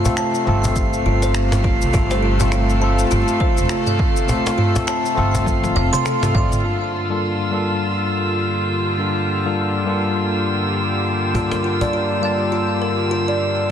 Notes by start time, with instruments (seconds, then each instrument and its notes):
Already playing: string section C3 A3 F4 A4, tine electric piano A3 C4 F4 A4, synth texture F5
0.04 tine electric piano A3 C4 F4 A4, cajon bass, shaker
0.17 kalimba A5, finger snap, shaker
0.35 shaker
0.45 upright bass G1, tine electric piano A3 C4 F4 A4
0.64 cajon bass, shaker
0.76 kick, shaker
0.93 shaker
1.06 upright bass G1, kalimba F4
1.22 kalimba C5, cajon slap, shaker
1.34 finger snap, shaker
1.52 cajon slap, mid tom, shaker
1.64 kalimba F4, kick, cajon slap
1.82 upright bass C2, shaker
1.93 upright bass G1, tine electric piano A3 C4 F4 A4, kalimba F4, kick, cajon bass, shaker
2.11 kalimba C5, cajon slap, shaker
2.23 kalimba F4
2.39 tine electric piano A3 C4 F4 A4, kalimba F5, cajon bass, shaker
2.52 kalimba F4, finger snap, shaker
2.69 shaker
2.80 tine electric piano A3 C4 F4 A4, kalimba A5
2.99 shaker
3.11 upright bass G1, kalimba F4, shaker
3.28 shaker
3.40 kalimba C5, kick
3.57 upright bass F1, shaker
3.69 kalimba F4, finger snap, shaker
3.86 kalimba F5, mid tom, shaker
3.99 kick
4.17 shaker
4.28 tine electric piano A3 C4 F4 A4, cajon bass, shaker
4.46 cajon slap, shaker
4.58 kalimba F4, mid tom
4.74 tine electric piano A3 C4 F4 A4, cajon bass, shaker
4.87 kalimba A5, finger snap, shaker
5.06 shaker
5.15 upright bass G1, tine electric piano A3 C4 F4 A4
5.35 cajon bass, shaker
5.46 kick, high tom, shaker
5.64 cajon slap, high tom, shaker
5.76 upright bass F1, kalimba F5
5.93 kalimba C6, cajon slap, mid tom, shaker
6.05 kalimba A4, finger snap, mid tom, shaker
6.21 tine electric piano A3 C4 F4 A4, cajon slap, mid tom, shaker
6.33 upright bass D2, tine electric piano A3 C4 F4 D5, kalimba F5, kick, cajon slap, mid tom
6.52 mid tom, shaker
6.63 tine electric piano G2 A#3 D4 F4 A4, string section D3, synth texture E6
7.08 tine electric piano G2 A#3 D4 F4 A4, string section A#3
7.50 tine electric piano G2 A#3 D4 F4 A4
8.12 string section G4
8.98 tine electric piano G2 A#3 D4 F4 A4
9.45 tine electric piano G2 A#3 D4 F4 A4
9.85 tine electric piano G2 A#3 D4 F4
9.90 tine electric piano A4
11.34 tine electric piano G2 A#3 D4 F4 A4, kalimba F4, cajon bass
11.51 kalimba A#4, cajon slap
11.64 kalimba F4
11.81 tine electric piano G2 A#3 D4 F4 A5, kalimba D5, cajon bass
11.93 kalimba F4
12.21 tine electric piano G2 A#3 D4 F4 A5, kalimba F5
12.52 kalimba F4
12.82 kalimba A#4
13.11 kalimba F4
13.28 kalimba D5